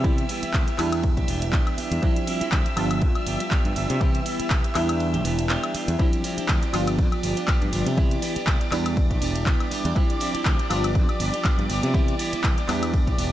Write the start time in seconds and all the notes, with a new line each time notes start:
Already playing: C3 E5 E6
0.03 E3 G3 B3 E4 G4, kick, ride
0.18 closed hi-hat
0.29 E3 B3 E4 G4, open hi-hat, ride
0.42 B3 E4 G4, muted fingered electric bass stroke, closed hi-hat
0.54 C2 E3 E4, kick, clap, ride
0.67 B3 E4 G4, closed hi-hat
0.78 E2 E3 G3 B3 D4 E4 G4, clap, open hi-hat, ride, high woodblock
0.92 closed hi-hat, high woodblock
1.03 kick, ride
1.17 B1 D4 G4, kick, closed hi-hat
1.28 E1 B3 D4 G4, open hi-hat, ride
1.42 D4 G4, closed hi-hat
1.53 B3 D4 G4, kick, clap, ride
1.67 closed hi-hat, high woodblock
1.77 B3 D4 G4, muted fingered electric bass stroke, open hi-hat, ride
1.91 E2, closed hi-hat
2.02 F3 G3 C4 D4 E4 G4, kick, ride
2.16 closed hi-hat
2.27 F3 C4 E4 G4, open hi-hat, ride
2.41 C4 E4 G4, muted fingered electric bass stroke, closed hi-hat
2.52 D2 F3 C4 E4 G4, kick, clap, ride
2.65 C4 E4 G4, closed hi-hat
2.76 G1 F3 G3 B3 D4 F4 G4, open hi-hat, ride, high woodblock
2.91 closed hi-hat, high woodblock
3.02 F2, kick, ride
3.15 B3 D4 G4, closed hi-hat, high woodblock
3.26 G1 F3 B3 D4 G4, open hi-hat, ride
3.40 B3 D4 G4, closed hi-hat
3.51 F3 B3 D4 G4, kick, clap, ride
3.65 G2, closed hi-hat
3.75 G1 F3 B3 D4 G4, open hi-hat, ride
3.89 C3 B3 D4 G4, closed hi-hat
4.00 E3 G3 B3 E4 G4, kick, ride
4.15 closed hi-hat
4.25 E3 B3 E4 G4, open hi-hat, ride
4.39 B3 E4 G4, muted fingered electric bass stroke, closed hi-hat
4.50 C2 E3 B3 E4 G4, kick, clap, ride
4.64 B3 E4 G4, closed hi-hat
4.75 E2 E3 G3 B3 D4 E4 G4, clap, open hi-hat, ride, high woodblock
4.89 closed hi-hat, high woodblock
5.00 ride
5.14 B1 D4 G4, closed hi-hat
5.25 E1 B3 D4 G4, open hi-hat, ride
5.38 D4 G4, closed hi-hat
5.49 B3 D4 G4, clap, ride
5.63 closed hi-hat, high woodblock
5.74 B3 D4 G4, muted fingered electric bass stroke, open hi-hat, ride
5.88 E2, closed hi-hat
5.99 F3 G3 C4 D4 E4 G4 D5 D6, kick, ride, tambourine
6.13 closed hi-hat, tambourine
6.24 F3 C4 E4 G4, open hi-hat, ride, tambourine
6.37 C4 E4 G4, muted fingered electric bass stroke, closed hi-hat, tambourine
6.48 D2 F3 C4 E4 G4, kick, clap, ride, tambourine
6.62 C4 E4 G4, closed hi-hat, tambourine
6.73 G1 F3 G3 B3 D4 F4 G4, open hi-hat, ride, tambourine, high woodblock
6.87 closed hi-hat, tambourine, high woodblock
6.98 F2, kick, ride, tambourine
7.12 B3 D4 G4, closed hi-hat, tambourine, high woodblock
7.23 G1 F3 B3 D4 G4, open hi-hat, ride, tambourine
7.36 B3 D4 G4, closed hi-hat, tambourine
7.48 F3 B3 D4 G4, kick, clap, ride, tambourine
7.62 G2, closed hi-hat, tambourine
7.72 G1 F3 B3 D4 G4, open hi-hat, ride, tambourine
7.86 C3 B3 D4 G4, closed hi-hat, tambourine
7.97 E3 G3 B3 E4 G4, kick, ride, tambourine
8.11 closed hi-hat, tambourine
8.22 E3 B3 E4 G4, open hi-hat, ride, tambourine
8.35 B3 E4 G4, muted fingered electric bass stroke, closed hi-hat, tambourine
8.47 C2 E3 B3 E4 G4, kick, clap, ride, tambourine
8.60 B3 E4 G4, closed hi-hat, tambourine
8.71 E2 E3 G3 B3 D4 E4 G4, clap, open hi-hat, ride, tambourine, high woodblock
8.86 closed hi-hat, tambourine, high woodblock
8.97 kick, ride, tambourine
9.10 B1 D4 G4, kick, closed hi-hat, tambourine
9.21 E1 B3 D4 G4, open hi-hat, ride, tambourine
9.35 D4 G4, closed hi-hat, tambourine
9.46 B3 D4 G4, kick, clap, ride, tambourine
9.60 closed hi-hat, tambourine, high woodblock
9.70 B3 D4 G4, muted fingered electric bass stroke, open hi-hat, ride, tambourine
9.85 E2 D4 G4, closed hi-hat, tambourine
9.95 F3 G3 C4 D4 E4 G4, kick, ride, tambourine
10.10 closed hi-hat, tambourine
10.20 F3 C4 E4 G4, open hi-hat, ride, tambourine
10.34 C4 E4 G4, muted fingered electric bass stroke, closed hi-hat
10.45 D2 F3 C4 G4, kick, clap, ride, tambourine
10.59 C4 E4 G4, closed hi-hat, tambourine
10.69 G1 F3 G3 B3 D4 F4 G4, open hi-hat, ride, tambourine, high woodblock
10.84 closed hi-hat, tambourine, high woodblock
10.95 F2, kick, ride, tambourine
11.08 B3 D4 G4, closed hi-hat, tambourine, high woodblock
11.19 G1 F3 B3 D4 G4, open hi-hat, ride, tambourine
11.33 B3 D4 G4, closed hi-hat, tambourine
11.44 F3 B3 D4 G4, kick, clap, ride, tambourine
11.58 G2, closed hi-hat, tambourine
11.69 G1 F3 B3 D4 G4, open hi-hat, ride, tambourine
11.83 C3, closed hi-hat, tambourine
11.94 E3 G3 B3 E4 G4, kick, ride, tambourine
12.08 closed hi-hat, tambourine
12.18 E3 B3 E4 G4, open hi-hat, ride, tambourine
12.32 B3 E4 G4, muted fingered electric bass stroke, closed hi-hat, tambourine
12.44 C2 E3 B3 E4 G4, kick, clap, ride, tambourine
12.57 B3 E4 G4, closed hi-hat, tambourine
12.68 E2 E3 G3 B3 D4 E4 G4, clap, open hi-hat, ride, tambourine, high woodblock
12.83 closed hi-hat, tambourine, high woodblock
12.93 kick, ride, tambourine
13.07 B1 D4 G4, kick, closed hi-hat, tambourine
13.18 E1 B3 D4 G4, open hi-hat, ride, tambourine